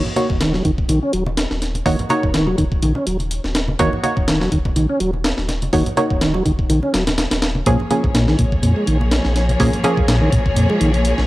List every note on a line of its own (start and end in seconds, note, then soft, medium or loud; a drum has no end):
0.05 muted conga medium
0.05 low conga medium
0.16 0.27 A#3 medium
0.16 0.27 D#4 medium
0.16 0.27 F#4 medium
0.16 0.27 C#5 medium
0.16 closed hi-hat medium
0.16 high conga medium
0.30 0.61 D#1 medium
0.30 kick medium
0.30 low conga medium
0.41 0.53 D#3 medium
0.41 snare loud
0.41 closed hi-hat medium
0.41 muted conga medium
0.54 0.63 F#3 loud
0.54 snare medium
0.54 high conga medium
0.65 0.84 D#1 medium
0.65 0.71 D#3 loud
0.65 kick medium
0.65 closed hi-hat medium
0.78 kick medium
0.89 0.99 A#1 loud
0.89 0.99 D#3 loud
0.89 closed hi-hat medium
0.89 muted conga soft
0.89 high conga medium
1.03 1.12 C#4 medium
1.13 1.46 D#1 loud
1.13 1.24 F#3 medium
1.13 closed hi-hat medium
1.26 muted conga medium
1.26 high conga medium
1.37 snare loud
1.37 closed hi-hat medium
1.51 1.82 D#1 medium
1.51 snare soft
1.62 snare soft
1.62 closed hi-hat medium
1.75 closed hi-hat soft
1.75 muted conga medium
1.75 high conga medium
1.86 1.96 D#1 medium
1.86 1.96 D#3 loud
1.86 1.97 A#3 medium
1.86 1.97 D#4 medium
1.86 1.97 F#4 medium
1.86 1.97 C#5 medium
1.86 kick loud
1.86 open hi-hat medium
1.99 closed hi-hat soft
1.99 low conga medium
2.09 3.77 A#3 medium
2.09 3.77 D#4 medium
2.09 3.77 F#4 medium
2.09 3.77 C#5 loud
2.09 closed hi-hat medium
2.09 muted conga medium
2.09 high conga medium
2.23 2.54 D#1 medium
2.23 kick medium
2.23 low conga medium
2.34 2.46 D#3 medium
2.34 snare loud
2.34 closed hi-hat medium
2.47 2.56 F#3 loud
2.47 high conga medium
2.58 2.77 D#1 medium
2.58 2.64 D#3 loud
2.58 kick medium
2.58 closed hi-hat medium
2.58 muted conga medium
2.72 kick medium
2.82 2.93 A#1 loud
2.82 2.93 D#3 loud
2.82 closed hi-hat medium
2.82 high conga medium
2.95 3.06 C#4 medium
2.95 muted conga medium
3.07 3.39 D#1 loud
3.07 3.17 F#3 medium
3.07 closed hi-hat medium
3.19 closed hi-hat soft
3.19 high conga medium
3.31 closed hi-hat medium
3.44 3.75 D#1 loud
3.44 snare soft
3.44 muted conga medium
3.55 snare loud
3.55 closed hi-hat medium
3.68 high conga loud
3.79 3.90 D#1 medium
3.79 3.90 D#3 loud
3.79 3.90 A#3 medium
3.79 3.90 D#4 medium
3.79 3.90 F#4 medium
3.79 3.90 C#5 loud
3.79 kick loud
3.79 closed hi-hat medium
3.79 muted conga medium
3.93 low conga medium
4.03 4.14 A#3 medium
4.03 4.14 D#4 medium
4.03 4.14 F#4 medium
4.03 4.14 C#5 medium
4.03 closed hi-hat medium
4.03 high conga medium
4.17 4.48 D#1 medium
4.17 kick medium
4.17 low conga medium
4.27 4.40 D#3 medium
4.27 snare loud
4.27 closed hi-hat medium
4.27 muted conga soft
4.41 4.49 F#3 loud
4.41 snare medium
4.41 high conga medium
4.52 4.71 D#1 medium
4.52 4.58 D#3 loud
4.52 kick medium
4.52 closed hi-hat medium
4.65 kick medium
4.65 muted conga medium
4.76 4.86 A#1 loud
4.76 4.86 D#3 loud
4.76 closed hi-hat medium
4.76 high conga medium
4.89 4.99 C#4 medium
5.00 5.33 D#1 loud
5.00 5.11 F#3 medium
5.00 closed hi-hat medium
5.13 muted conga medium
5.13 high conga medium
5.24 snare loud
5.24 closed hi-hat medium
5.38 5.69 D#1 medium
5.38 snare soft
5.48 snare soft
5.48 closed hi-hat medium
5.48 muted conga medium
5.62 closed hi-hat soft
5.62 high conga medium
5.73 5.83 D#1 loud
5.73 5.83 D#3 loud
5.73 5.84 A#3 medium
5.73 5.84 D#4 medium
5.73 5.84 F#4 medium
5.73 5.84 C#5 medium
5.73 kick loud
5.73 open hi-hat medium
5.86 closed hi-hat soft
5.86 low conga medium
5.97 7.64 A#3 medium
5.97 7.64 D#4 medium
5.97 7.64 F#4 medium
5.97 7.64 C#5 loud
5.97 closed hi-hat medium
5.97 muted conga soft
5.97 high conga medium
6.10 6.41 D#1 medium
6.10 kick medium
6.10 low conga medium
6.21 6.33 D#3 medium
6.21 snare loud
6.21 closed hi-hat medium
6.34 6.43 F#3 loud
6.34 muted conga medium
6.34 high conga medium
6.45 6.65 D#1 medium
6.45 6.52 D#3 medium
6.45 kick medium
6.45 closed hi-hat medium
6.59 kick medium
6.70 6.80 A#1 loud
6.70 6.80 D#3 loud
6.70 closed hi-hat medium
6.70 high conga medium
6.83 6.93 C#4 medium
6.83 muted conga medium
6.93 7.26 D#1 loud
6.93 7.04 F#3 medium
6.93 snare loud
6.93 closed hi-hat medium
7.07 snare loud
7.07 closed hi-hat medium
7.07 high conga medium
7.18 snare loud
7.18 closed hi-hat medium
7.18 muted conga medium
7.31 7.62 D#1 medium
7.31 snare loud
7.31 closed hi-hat medium
7.42 snare loud
7.42 closed hi-hat medium
7.55 high conga medium
7.66 7.77 A#1 medium
7.66 7.77 A#2 loud
7.66 7.77 F3 medium
7.66 11.27 F3 medium
7.66 11.27 A#3 medium
7.66 7.77 A#3 medium
7.66 7.77 C#4 medium
7.66 11.27 G#4 medium
7.66 7.77 G#4 loud
7.66 11.27 C#5 medium
7.66 kick loud
7.66 closed hi-hat medium
7.79 muted conga soft
7.79 low conga medium
7.91 8.02 F3 medium
7.91 8.02 A#3 medium
7.91 8.02 C#4 medium
7.91 8.02 G#4 medium
7.91 closed hi-hat medium
7.91 high conga medium
8.04 8.35 A#1 medium
8.04 kick medium
8.04 low conga medium
8.14 8.27 A#2 medium
8.14 snare loud
8.14 closed hi-hat medium
8.14 muted conga medium
8.28 8.37 D#3 loud
8.28 snare medium
8.28 high conga medium
8.39 8.58 A#1 medium
8.39 8.45 A#2 loud
8.39 kick medium
8.39 closed hi-hat medium
8.52 kick medium
8.62 8.73 F2 loud
8.62 8.73 A#2 loud
8.62 closed hi-hat medium
8.62 muted conga soft
8.62 high conga medium
8.76 8.86 G#3 medium
8.87 9.20 A#1 loud
8.87 8.98 D#3 medium
8.87 closed hi-hat medium
9.01 muted conga medium
9.01 high conga medium
9.12 snare loud
9.12 closed hi-hat medium
9.25 9.56 A#1 medium
9.25 snare soft
9.36 snare soft
9.36 closed hi-hat medium
9.49 closed hi-hat soft
9.49 muted conga soft
9.49 high conga loud
9.60 9.70 A#1 medium
9.60 9.70 A#2 loud
9.60 9.71 F3 medium
9.60 9.71 A#3 medium
9.60 9.71 C#4 medium
9.60 9.71 G#4 medium
9.60 kick loud
9.60 open hi-hat medium
9.73 closed hi-hat soft
9.73 low conga medium
9.84 11.27 F3 medium
9.84 11.27 A#3 medium
9.84 11.27 C#4 medium
9.84 11.27 G#4 loud
9.84 closed hi-hat medium
9.84 muted conga medium
9.84 high conga medium
9.97 10.28 A#1 medium
9.97 kick medium
9.97 low conga medium
10.08 10.20 A#2 medium
10.08 snare loud
10.08 closed hi-hat medium
10.21 10.30 D#3 loud
10.21 high conga medium
10.32 10.52 A#1 medium
10.32 10.39 A#2 loud
10.32 kick medium
10.32 closed hi-hat medium
10.32 muted conga soft
10.46 kick medium
10.56 10.67 F2 loud
10.56 10.67 A#2 loud
10.56 closed hi-hat medium
10.56 high conga medium
10.69 10.80 G#3 medium
10.69 muted conga medium
10.81 11.13 A#1 loud
10.81 10.91 D#3 medium
10.81 closed hi-hat medium
10.94 closed hi-hat soft
10.94 high conga medium
11.05 closed hi-hat medium
11.18 11.27 A#1 medium
11.18 snare soft
11.18 muted conga medium